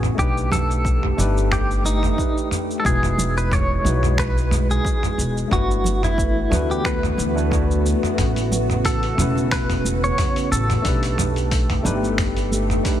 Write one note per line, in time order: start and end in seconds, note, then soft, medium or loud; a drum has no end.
0.00 0.15 C#3 medium
0.00 0.13 A3 medium
0.00 0.15 B3 medium
0.00 0.14 C#4 medium
0.00 0.14 E4 medium
0.00 0.15 F#4 medium
0.00 0.15 G#4 medium
0.00 0.16 B4 medium
0.00 mid tom medium
0.00 shaker soft
0.15 1.10 B1 medium
0.15 1.13 A3 medium
0.15 2.82 A3 medium
0.15 1.14 D4 medium
0.15 1.15 D#4 medium
0.15 2.82 G4 medium
0.15 kick loud
0.19 0.50 G4 medium
0.19 1.15 G4 medium
0.19 1.16 B4 medium
0.19 shaker soft
0.37 shaker soft
0.51 1.52 A4 loud
0.51 mid tom medium
0.51 high conga medium
0.51 low conga medium
0.51 shaker medium
0.71 shaker soft
0.85 kick loud
0.85 shaker soft
1.03 mid tom medium
1.17 2.10 G1 medium
1.17 1.80 A3 medium
1.17 1.81 D4 medium
1.17 1.81 D#4 medium
1.17 1.82 G4 medium
1.17 1.82 B4 loud
1.17 high conga medium
1.17 low conga medium
1.17 shaker medium
1.37 shaker soft
1.51 1.83 G4 medium
1.51 finger snap medium
1.51 kick loud
1.51 mid tom medium
1.51 shaker soft
1.71 shaker soft
1.84 2.48 D#4 medium
1.84 high conga medium
1.84 shaker medium
2.03 mid tom medium
2.03 shaker soft
2.17 2.81 A3 medium
2.17 2.81 D#4 medium
2.17 2.82 G4 medium
2.17 2.82 B4 medium
2.17 2.81 D5 medium
2.17 kick loud
2.17 shaker soft
2.37 shaker soft
2.51 mid tom medium
2.51 shaker medium
2.71 shaker soft
2.80 3.80 G#3 medium
2.80 3.81 D#4 medium
2.80 2.85 A4 medium
2.85 3.76 E1 medium
2.85 5.49 G#3 medium
2.85 3.81 E4 medium
2.85 3.82 F#4 medium
2.85 3.37 G#4 loud
2.85 3.83 B4 medium
2.85 kick loud
2.85 shaker soft
3.03 mid tom medium
3.03 shaker soft
3.18 high conga medium
3.18 low conga medium
3.18 shaker medium
3.37 3.53 B4 medium
3.37 shaker soft
3.51 4.19 C#5 loud
3.51 kick loud
3.51 mid tom medium
3.51 shaker soft
3.82 4.76 B1 medium
3.82 5.46 G#3 medium
3.82 5.47 D#4 medium
3.82 5.48 E4 medium
3.82 high conga medium
3.82 low conga medium
3.86 5.49 F#4 medium
3.86 5.50 B4 medium
3.86 shaker medium
4.03 mid tom medium
4.03 shaker soft
4.18 4.67 B4 loud
4.18 finger snap medium
4.18 kick loud
4.18 shaker soft
4.38 shaker soft
4.51 mid tom medium
4.51 high conga loud
4.51 shaker medium
4.71 5.48 G#4 medium
4.71 shaker soft
4.85 kick loud
4.85 shaker soft
5.03 mid tom medium
5.03 shaker soft
5.18 5.41 E1 medium
5.18 shaker medium
5.37 shaker soft
5.48 6.43 G1 medium
5.48 8.16 E3 medium
5.48 6.46 A3 medium
5.48 8.15 A3 medium
5.48 10.81 B3 medium
5.48 6.47 D4 medium
5.48 6.48 E4 medium
5.48 10.81 F#4 medium
5.48 kick loud
5.48 mid tom medium
5.53 6.04 F#4 medium
5.53 6.49 F#4 medium
5.53 6.49 B4 medium
5.53 shaker soft
5.71 shaker soft
5.84 high conga medium
5.84 low conga medium
5.84 shaker medium
6.03 6.71 E4 medium
6.03 mid tom medium
6.03 shaker soft
6.18 kick loud
6.18 shaker soft
6.50 7.17 D2 medium
6.50 7.14 A3 medium
6.50 7.14 D4 medium
6.50 7.14 E4 medium
6.50 7.15 F#4 medium
6.50 7.15 B4 medium
6.50 mid tom medium
6.50 high conga medium
6.50 low conga medium
6.50 shaker medium
6.71 6.86 G4 medium
6.71 shaker soft
6.85 7.81 B4 medium
6.85 finger snap medium
6.85 kick loud
6.85 shaker soft
7.03 mid tom medium
7.03 shaker soft
7.18 7.93 D2 medium
7.18 high conga medium
7.18 shaker medium
7.35 7.48 A3 medium
7.35 7.49 D4 medium
7.35 7.49 E4 medium
7.35 7.50 F#4 medium
7.35 7.50 B4 medium
7.35 shaker soft
7.50 8.14 A3 medium
7.50 8.14 D4 medium
7.50 8.15 E4 medium
7.50 8.15 F#4 medium
7.50 8.15 D5 loud
7.50 kick loud
7.50 mid tom medium
7.50 shaker soft
7.71 shaker soft
7.86 shaker medium
8.03 mid tom medium
8.03 shaker soft
8.15 9.10 A1 medium
8.15 10.82 C#3 medium
8.15 9.13 A3 medium
8.15 9.14 C#4 medium
8.15 9.14 E4 medium
8.15 kick loud
8.15 mid tom medium
8.15 open hi-hat medium
8.19 9.15 F#4 medium
8.19 9.16 B4 medium
8.19 shaker soft
8.36 open hi-hat soft
8.36 muted conga medium
8.36 shaker soft
8.52 high conga medium
8.52 low conga medium
8.52 shaker medium
8.70 mid tom medium
8.70 shaker soft
8.85 9.52 A4 medium
8.85 kick loud
8.85 open hi-hat medium
8.85 shaker soft
9.03 open hi-hat soft
9.15 10.10 E1 medium
9.15 10.79 A3 medium
9.15 10.80 C#4 medium
9.15 10.81 E4 medium
9.15 mid tom medium
9.19 10.82 F#4 medium
9.19 10.83 B4 medium
9.19 high conga medium
9.19 low conga medium
9.19 shaker medium
9.37 muted conga soft
9.37 shaker soft
9.51 10.03 B4 medium
9.51 finger snap medium
9.51 kick medium
9.51 open hi-hat medium
9.51 shaker soft
9.70 mid tom medium
9.70 open hi-hat soft
9.70 shaker soft
9.85 high conga medium
9.85 shaker medium
10.04 10.51 C#5 loud
10.04 shaker soft
10.18 kick loud
10.18 mid tom medium
10.18 open hi-hat medium
10.18 shaker soft
10.36 open hi-hat soft
10.36 shaker soft
10.52 10.74 A1 medium
10.52 13.00 A4 medium
10.52 shaker medium
10.70 mid tom medium
10.70 open hi-hat soft
10.70 shaker soft
10.82 11.76 B1 medium
10.82 11.80 A3 medium
10.82 13.00 A3 medium
10.82 11.80 D4 medium
10.82 11.81 D#4 medium
10.82 13.00 G4 medium
10.82 kick loud
10.82 open hi-hat medium
10.86 11.82 G4 medium
10.86 11.83 B4 medium
10.86 shaker soft
11.03 open hi-hat soft
11.03 shaker soft
11.18 mid tom medium
11.18 high conga medium
11.18 low conga medium
11.18 shaker medium
11.36 open hi-hat soft
11.36 shaker soft
11.51 kick medium
11.51 open hi-hat medium
11.51 shaker soft
11.70 mid tom medium
11.70 open hi-hat soft
11.83 12.76 G1 medium
11.83 12.47 A3 medium
11.83 12.47 D4 medium
11.83 12.48 D#4 medium
11.83 12.48 G4 medium
11.83 12.49 B4 loud
11.83 high conga medium
11.83 low conga medium
11.83 shaker medium
12.03 muted conga soft
12.03 shaker soft
12.18 finger snap medium
12.18 kick medium
12.18 mid tom medium
12.18 open hi-hat medium
12.18 shaker soft
12.37 open hi-hat soft
12.37 muted conga soft
12.37 shaker soft
12.52 high conga medium
12.52 shaker medium
12.70 mid tom medium
12.70 shaker soft
12.83 13.00 A3 medium
12.83 13.00 D4 medium
12.83 13.00 D#4 medium
12.83 13.00 G4 medium
12.83 13.00 B4 medium
12.83 kick loud
12.83 open hi-hat medium
12.83 shaker soft